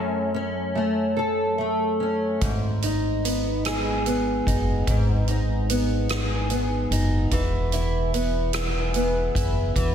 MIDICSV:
0, 0, Header, 1, 4, 480
1, 0, Start_track
1, 0, Tempo, 824176
1, 1406, Time_signature, 6, 3, 24, 8
1, 1886, Tempo, 814111
1, 5843, End_track
2, 0, Start_track
2, 0, Title_t, "Steel-string acoustic guitar"
2, 0, Program_c, 0, 25
2, 0, Note_on_c, 0, 42, 50
2, 0, Note_on_c, 0, 57, 39
2, 0, Note_on_c, 0, 61, 45
2, 0, Note_on_c, 0, 69, 45
2, 193, Note_off_c, 0, 61, 0
2, 200, Note_on_c, 0, 61, 43
2, 432, Note_off_c, 0, 57, 0
2, 439, Note_on_c, 0, 57, 39
2, 672, Note_off_c, 0, 69, 0
2, 679, Note_on_c, 0, 69, 48
2, 914, Note_off_c, 0, 57, 0
2, 921, Note_on_c, 0, 57, 40
2, 1158, Note_off_c, 0, 61, 0
2, 1165, Note_on_c, 0, 61, 41
2, 1403, Note_off_c, 0, 42, 0
2, 1406, Note_on_c, 0, 44, 57
2, 1453, Note_off_c, 0, 69, 0
2, 1454, Note_off_c, 0, 57, 0
2, 1455, Note_off_c, 0, 61, 0
2, 1649, Note_on_c, 0, 63, 45
2, 1890, Note_on_c, 0, 59, 41
2, 2131, Note_on_c, 0, 68, 51
2, 2371, Note_off_c, 0, 59, 0
2, 2373, Note_on_c, 0, 59, 39
2, 2606, Note_off_c, 0, 63, 0
2, 2613, Note_on_c, 0, 63, 44
2, 2848, Note_off_c, 0, 44, 0
2, 2856, Note_on_c, 0, 44, 61
2, 3086, Note_off_c, 0, 63, 0
2, 3093, Note_on_c, 0, 63, 43
2, 3334, Note_off_c, 0, 59, 0
2, 3336, Note_on_c, 0, 59, 41
2, 3572, Note_off_c, 0, 68, 0
2, 3574, Note_on_c, 0, 68, 50
2, 3812, Note_off_c, 0, 59, 0
2, 3814, Note_on_c, 0, 59, 42
2, 4047, Note_off_c, 0, 63, 0
2, 4054, Note_on_c, 0, 63, 46
2, 4291, Note_off_c, 0, 44, 0
2, 4294, Note_on_c, 0, 52, 60
2, 4339, Note_off_c, 0, 63, 0
2, 4536, Note_on_c, 0, 64, 48
2, 4772, Note_off_c, 0, 59, 0
2, 4775, Note_on_c, 0, 59, 43
2, 5006, Note_off_c, 0, 68, 0
2, 5009, Note_on_c, 0, 68, 49
2, 5248, Note_off_c, 0, 59, 0
2, 5255, Note_on_c, 0, 59, 46
2, 5489, Note_off_c, 0, 64, 0
2, 5491, Note_on_c, 0, 64, 49
2, 5727, Note_off_c, 0, 52, 0
2, 5729, Note_on_c, 0, 52, 55
2, 5843, Note_off_c, 0, 52, 0
2, 5843, Note_off_c, 0, 59, 0
2, 5843, Note_off_c, 0, 64, 0
2, 5843, Note_off_c, 0, 68, 0
2, 5843, End_track
3, 0, Start_track
3, 0, Title_t, "Upright bass"
3, 0, Program_c, 1, 32
3, 1407, Note_on_c, 1, 32, 68
3, 2585, Note_off_c, 1, 32, 0
3, 2611, Note_on_c, 1, 30, 68
3, 2835, Note_off_c, 1, 30, 0
3, 2849, Note_on_c, 1, 32, 71
3, 4024, Note_off_c, 1, 32, 0
3, 4050, Note_on_c, 1, 30, 71
3, 4274, Note_off_c, 1, 30, 0
3, 4288, Note_on_c, 1, 28, 67
3, 5465, Note_off_c, 1, 28, 0
3, 5491, Note_on_c, 1, 30, 67
3, 5715, Note_off_c, 1, 30, 0
3, 5729, Note_on_c, 1, 28, 72
3, 5843, Note_off_c, 1, 28, 0
3, 5843, End_track
4, 0, Start_track
4, 0, Title_t, "Drums"
4, 1405, Note_on_c, 9, 42, 51
4, 1406, Note_on_c, 9, 36, 78
4, 1464, Note_off_c, 9, 42, 0
4, 1465, Note_off_c, 9, 36, 0
4, 1645, Note_on_c, 9, 42, 35
4, 1703, Note_off_c, 9, 42, 0
4, 1893, Note_on_c, 9, 42, 53
4, 1952, Note_off_c, 9, 42, 0
4, 2128, Note_on_c, 9, 42, 66
4, 2135, Note_on_c, 9, 37, 74
4, 2187, Note_off_c, 9, 42, 0
4, 2194, Note_off_c, 9, 37, 0
4, 2370, Note_on_c, 9, 42, 41
4, 2429, Note_off_c, 9, 42, 0
4, 2611, Note_on_c, 9, 36, 62
4, 2617, Note_on_c, 9, 42, 51
4, 2670, Note_off_c, 9, 36, 0
4, 2676, Note_off_c, 9, 42, 0
4, 2850, Note_on_c, 9, 36, 80
4, 2850, Note_on_c, 9, 42, 52
4, 2909, Note_off_c, 9, 36, 0
4, 2909, Note_off_c, 9, 42, 0
4, 3087, Note_on_c, 9, 42, 36
4, 3146, Note_off_c, 9, 42, 0
4, 3335, Note_on_c, 9, 42, 56
4, 3394, Note_off_c, 9, 42, 0
4, 3569, Note_on_c, 9, 42, 62
4, 3576, Note_on_c, 9, 37, 79
4, 3628, Note_off_c, 9, 42, 0
4, 3635, Note_off_c, 9, 37, 0
4, 3808, Note_on_c, 9, 42, 44
4, 3867, Note_off_c, 9, 42, 0
4, 4055, Note_on_c, 9, 42, 53
4, 4114, Note_off_c, 9, 42, 0
4, 4289, Note_on_c, 9, 36, 77
4, 4289, Note_on_c, 9, 42, 50
4, 4348, Note_off_c, 9, 36, 0
4, 4348, Note_off_c, 9, 42, 0
4, 4529, Note_on_c, 9, 42, 37
4, 4588, Note_off_c, 9, 42, 0
4, 4776, Note_on_c, 9, 42, 53
4, 4835, Note_off_c, 9, 42, 0
4, 5006, Note_on_c, 9, 42, 62
4, 5014, Note_on_c, 9, 37, 85
4, 5065, Note_off_c, 9, 42, 0
4, 5073, Note_off_c, 9, 37, 0
4, 5248, Note_on_c, 9, 42, 41
4, 5307, Note_off_c, 9, 42, 0
4, 5490, Note_on_c, 9, 36, 68
4, 5496, Note_on_c, 9, 42, 54
4, 5549, Note_off_c, 9, 36, 0
4, 5555, Note_off_c, 9, 42, 0
4, 5730, Note_on_c, 9, 36, 72
4, 5731, Note_on_c, 9, 42, 53
4, 5789, Note_off_c, 9, 36, 0
4, 5790, Note_off_c, 9, 42, 0
4, 5843, End_track
0, 0, End_of_file